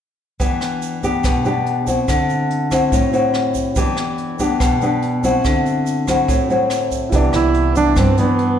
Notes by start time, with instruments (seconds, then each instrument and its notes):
0.40 nylon-string guitar E3 B3 D4 G4, kick, closed hi-hat, shaker
0.61 cross-stick, closed hi-hat, shaker
0.82 closed hi-hat, shaker
1.03 nylon-string guitar B3 D4 G4, kick, closed hi-hat, shaker
1.24 nylon-string guitar B2, kick, cross-stick, closed hi-hat, shaker
1.45 nylon-string guitar B3 D4 G4, closed hi-hat, shaker
1.66 closed hi-hat
1.87 nylon-string guitar C4 E4 F#4, kick, closed hi-hat, shaker
2.08 nylon-string guitar D3, kick, cross-stick, closed hi-hat, shaker
2.29 closed hi-hat, shaker
2.50 closed hi-hat
2.71 nylon-string guitar C4 E4 F#4, kick, cross-stick, closed hi-hat, shaker
2.92 nylon-string guitar A2, kick, closed hi-hat, shaker
3.13 nylon-string guitar C4 E4 F#4, closed hi-hat, shaker
3.34 cross-stick, closed hi-hat
3.55 kick, closed hi-hat, shaker
3.76 nylon-string guitar E3 B3 D4 G4, kick, closed hi-hat, shaker
3.97 cross-stick, closed hi-hat, shaker
4.18 closed hi-hat
4.39 nylon-string guitar B3 D4 G4, kick, closed hi-hat, shaker
4.60 nylon-string guitar B2, kick, cross-stick, closed hi-hat, shaker
4.81 nylon-string guitar B3 D4 G4, closed hi-hat, shaker
5.02 closed hi-hat
5.23 nylon-string guitar C4 E4 F#4, kick, closed hi-hat, shaker
5.45 nylon-string guitar D3, kick, cross-stick, closed hi-hat, shaker
5.66 closed hi-hat, shaker
5.86 closed hi-hat, shaker
6.08 nylon-string guitar C4 E4 F#4, kick, cross-stick, shaker
6.28 nylon-string guitar A2, kick, closed hi-hat, shaker
6.50 nylon-string guitar C4 E4 F#4, closed hi-hat, shaker
6.70 cross-stick, closed hi-hat, shaker
6.91 kick, closed hi-hat, shaker
7.09 upright bass C2, grand piano E4 G4, kick, closed hi-hat, shaker
7.13 nylon-string guitar C3 E3 B3 D4, grand piano B4 D5
7.33 upright bass C2, tenor saxophone E4, cross-stick, closed hi-hat, shaker
7.54 closed hi-hat
7.75 nylon-string guitar E3 B3 D4, tenor saxophone D4, kick, closed hi-hat, shaker
7.96 upright bass G2, nylon-string guitar G2, tenor saxophone C4, kick, cross-stick, closed hi-hat, shaker
8.17 nylon-string guitar E3 B3 D4, tenor saxophone B3, closed hi-hat, shaker
8.39 closed hi-hat